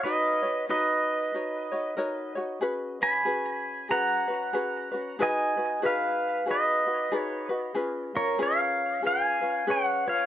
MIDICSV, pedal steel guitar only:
0, 0, Header, 1, 2, 480
1, 0, Start_track
1, 0, Tempo, 641711
1, 36, Time_signature, 4, 2, 24, 8
1, 7674, End_track
2, 0, Start_track
2, 0, Title_t, "Pedal steel guitar"
2, 0, Program_c, 0, 26
2, 26, Note_on_c, 0, 75, 78
2, 33, Note_on_c, 0, 71, 67
2, 481, Note_off_c, 0, 75, 0
2, 484, Note_off_c, 0, 71, 0
2, 526, Note_on_c, 0, 71, 57
2, 529, Note_on_c, 0, 75, 75
2, 1451, Note_off_c, 0, 71, 0
2, 1451, Note_off_c, 0, 75, 0
2, 2265, Note_on_c, 0, 83, 88
2, 2268, Note_on_c, 0, 80, 70
2, 2895, Note_off_c, 0, 83, 0
2, 2896, Note_off_c, 0, 80, 0
2, 2925, Note_on_c, 0, 82, 88
2, 2931, Note_on_c, 0, 78, 66
2, 3853, Note_off_c, 0, 78, 0
2, 3907, Note_on_c, 0, 75, 67
2, 3909, Note_off_c, 0, 82, 0
2, 3912, Note_on_c, 0, 80, 88
2, 4341, Note_off_c, 0, 75, 0
2, 4379, Note_on_c, 0, 71, 64
2, 4384, Note_on_c, 0, 77, 79
2, 4386, Note_off_c, 0, 80, 0
2, 4817, Note_off_c, 0, 71, 0
2, 4864, Note_off_c, 0, 77, 0
2, 4866, Note_on_c, 0, 71, 52
2, 4869, Note_on_c, 0, 75, 70
2, 5378, Note_off_c, 0, 75, 0
2, 5378, Note_on_c, 0, 73, 70
2, 5592, Note_off_c, 0, 71, 0
2, 5592, Note_off_c, 0, 73, 0
2, 6108, Note_on_c, 0, 70, 62
2, 6108, Note_on_c, 0, 73, 77
2, 6274, Note_off_c, 0, 70, 0
2, 6291, Note_off_c, 0, 73, 0
2, 6301, Note_on_c, 0, 73, 73
2, 6304, Note_on_c, 0, 77, 94
2, 6738, Note_off_c, 0, 73, 0
2, 6740, Note_off_c, 0, 77, 0
2, 6781, Note_on_c, 0, 77, 75
2, 6785, Note_on_c, 0, 80, 96
2, 7218, Note_off_c, 0, 77, 0
2, 7257, Note_on_c, 0, 73, 72
2, 7264, Note_off_c, 0, 80, 0
2, 7265, Note_on_c, 0, 78, 87
2, 7518, Note_off_c, 0, 73, 0
2, 7537, Note_on_c, 0, 73, 69
2, 7547, Note_off_c, 0, 78, 0
2, 7550, Note_on_c, 0, 77, 88
2, 7674, Note_off_c, 0, 73, 0
2, 7674, Note_off_c, 0, 77, 0
2, 7674, End_track
0, 0, End_of_file